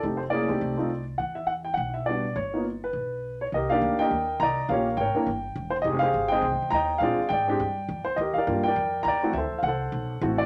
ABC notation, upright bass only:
X:1
M:4/4
L:1/8
Q:"Swing" 1/4=206
K:G
V:1 name="Upright bass" clef=bass
=F,,,3 C,, C,,4 | E,,4 B,,,4 | G,,,4 B,,,4 | [K:Cm] C,,2 D,, z E,,2 C,,2 |
B,,,2 A,,, z G,,,2 =E,,,2 | F,,,2 G,,,2 (3C,, A,,, F,,, E,,2 | B,, z A,,2 G,,2 F,, z | E,, z G,,2 F,,2 E,,2 |
D,, z C,,2 =B,,,2 =A,,,2 |]